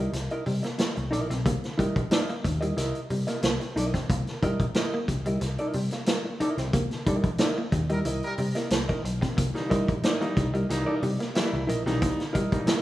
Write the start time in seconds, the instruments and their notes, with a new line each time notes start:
Already playing: hollow-body jazz guitar A#4 D#5
0.00 hollow-body jazz guitar E4
0.13 picked electric bass C2, muted hollow-body jazz guitar stroke, muted clean electric guitar stroke, snare, closed hi-hat
0.30 hollow-body jazz guitar E4 A#4 D#5, closed hi-hat
0.46 picked electric bass C3, clean electric guitar G3, muted hollow-body jazz guitar stroke, open hi-hat
0.63 clean electric guitar A#3, muted hollow-body jazz guitar stroke, snare, closed hi-hat
0.78 clean electric guitar A#3, muted hollow-body jazz guitar stroke, snare, closed hi-hat
0.96 picked electric bass C2, muted hollow-body jazz guitar stroke, closed hi-hat
1.11 picked electric bass A#1, hollow-body jazz guitar E4 A#4 D#5, muted clean electric guitar stroke, closed hi-hat
1.29 picked electric bass B1, clean electric guitar C4, muted hollow-body jazz guitar stroke, snare, closed hi-hat
1.45 picked electric bass C2, clean electric guitar A#3, kick, closed hi-hat
1.64 snare, closed hi-hat
1.78 clean electric guitar G3, hollow-body jazz guitar E4 A#4 D#5, kick, closed hi-hat
1.96 picked electric bass A#1, muted clean electric guitar stroke, kick, closed hi-hat
2.11 hollow-body jazz guitar E4 A#4 D#5, snare, closed hi-hat
2.29 clean electric guitar A#3, closed hi-hat
2.44 picked electric bass D#2, muted hollow-body jazz guitar stroke, muted clean electric guitar stroke, kick, closed hi-hat
2.61 clean electric guitar G3, hollow-body jazz guitar E4 A#4 D#5, closed hi-hat
2.77 picked electric bass C2, hollow-body jazz guitar E4 A#4 D#5, muted clean electric guitar stroke, snare, closed hi-hat
2.95 closed hi-hat
3.10 picked electric bass C3, clean electric guitar G3, muted hollow-body jazz guitar stroke, open hi-hat
3.27 clean electric guitar A#3, hollow-body jazz guitar E4 A#4 D#5, snare, closed hi-hat
3.42 picked electric bass C2, clean electric guitar A#3, muted hollow-body jazz guitar stroke, snare, closed hi-hat
3.60 muted hollow-body jazz guitar stroke, closed hi-hat
3.76 picked electric bass B1, hollow-body jazz guitar E4 A#4 D#5, muted clean electric guitar stroke, closed hi-hat
3.94 clean electric guitar C4, muted hollow-body jazz guitar stroke, kick, snare, closed hi-hat
4.10 picked electric bass C2, clean electric guitar A#3, kick, closed hi-hat
4.27 snare, closed hi-hat
4.42 clean electric guitar G3, hollow-body jazz guitar E4 A#4 D#5, kick, closed hi-hat
4.60 picked electric bass A#1, muted clean electric guitar stroke, kick, closed hi-hat
4.74 hollow-body jazz guitar E4 A#4 D#5, snare, closed hi-hat
4.94 clean electric guitar A#3
5.08 picked electric bass C2, muted clean electric guitar stroke, muted hollow-body jazz guitar stroke, kick, closed hi-hat
5.26 clean electric guitar G3, hollow-body jazz guitar E4 A#4 D#5, closed hi-hat
5.41 picked electric bass C2, muted clean electric guitar stroke, muted hollow-body jazz guitar stroke, snare, closed hi-hat
5.58 hollow-body jazz guitar E4 A#4 D#5, closed hi-hat
5.73 picked electric bass C3, clean electric guitar G3, muted hollow-body jazz guitar stroke, open hi-hat
5.91 clean electric guitar A#3, muted hollow-body jazz guitar stroke, snare, closed hi-hat
6.06 clean electric guitar A#3, muted hollow-body jazz guitar stroke, snare, closed hi-hat
6.25 muted hollow-body jazz guitar stroke
6.40 hollow-body jazz guitar E4 A#4 D#5, muted picked electric bass stroke, muted clean electric guitar stroke, closed hi-hat
6.57 picked electric bass C2, clean electric guitar C4, muted hollow-body jazz guitar stroke, snare, closed hi-hat
6.73 picked electric bass C2, clean electric guitar A#3, kick, closed hi-hat
6.91 snare, closed hi-hat
7.06 clean electric guitar G3, hollow-body jazz guitar E4 A#4 D#5, kick, closed hi-hat
7.24 picked electric bass A#1, muted clean electric guitar stroke, kick, closed hi-hat
7.38 hollow-body jazz guitar E4 A#4 D#5, snare, closed hi-hat
7.58 clean electric guitar A#3
7.72 picked electric bass D#2, muted hollow-body jazz guitar stroke, muted clean electric guitar stroke, kick, closed hi-hat
7.89 clean electric guitar G3, horn section G3 E4 A#4, hollow-body jazz guitar E4 A#4 D#5, closed hi-hat
8.05 picked electric bass C2, hollow-body jazz guitar E4 A#4 D#5, muted clean electric guitar stroke, closed hi-hat
8.23 horn section G3 E4 A#4, closed hi-hat
8.38 picked electric bass C3, clean electric guitar G3, muted hollow-body jazz guitar stroke, open hi-hat
8.55 clean electric guitar A#3, hollow-body jazz guitar E4 A#4 D#5, snare, closed hi-hat
8.70 picked electric bass C2, clean electric guitar A#3, snare, closed hi-hat
8.89 hollow-body jazz guitar E4 A#4 D#5, kick, closed hi-hat
9.04 picked electric bass B1, muted hollow-body jazz guitar stroke, muted clean electric guitar stroke, closed hi-hat
9.21 clean electric guitar C4, muted hollow-body jazz guitar stroke, kick, snare, closed hi-hat
9.37 picked electric bass C2, clean electric guitar A#3, kick, closed hi-hat
9.54 upright piano E3 G3 A#3 D#4, snare, closed hi-hat
9.69 clean electric guitar G3, hollow-body jazz guitar E4 A#4 D#5, kick, closed hi-hat
9.88 picked electric bass A#1, muted clean electric guitar stroke, kick, closed hi-hat
10.03 hollow-body jazz guitar E4 A#4 D#5, snare, closed hi-hat
10.20 upright piano E3 G3 A#3 D#4, clean electric guitar A#3, closed hi-hat
10.37 picked electric bass C2, muted clean electric guitar stroke, muted hollow-body jazz guitar stroke, kick, closed hi-hat
10.54 clean electric guitar G3, hollow-body jazz guitar E4 A#4 D#5, closed hi-hat
10.69 picked electric bass C2, upright piano E3 G3 A#3 D#4, muted hollow-body jazz guitar stroke, muted clean electric guitar stroke, snare, closed hi-hat
10.86 hollow-body jazz guitar E4 A#4 D#5
11.02 picked electric bass C3, clean electric guitar G3, muted hollow-body jazz guitar stroke, open hi-hat
11.19 clean electric guitar A#3, muted hollow-body jazz guitar stroke, snare, closed hi-hat
11.35 upright piano E3 G3 A#3 E4, clean electric guitar A#3, muted hollow-body jazz guitar stroke, snare, closed hi-hat
11.53 picked electric bass C2, muted hollow-body jazz guitar stroke
11.67 picked electric bass A#1, hollow-body jazz guitar E4 A#4 D#5, muted clean electric guitar stroke, closed hi-hat
11.86 picked electric bass B1, upright piano E3 G3 A#3 D#4, clean electric guitar C4, snare, closed hi-hat
12.02 picked electric bass C2, clean electric guitar A#3, kick, closed hi-hat
12.20 snare, closed hi-hat
12.33 clean electric guitar G3, hollow-body jazz guitar E4 A#4 D#5, kick, closed hi-hat
12.52 picked electric bass A#1, upright piano E3 G3 A#3 D#4, muted clean electric guitar stroke, kick, closed hi-hat
12.67 hollow-body jazz guitar E4 A#4 D#5, snare, closed hi-hat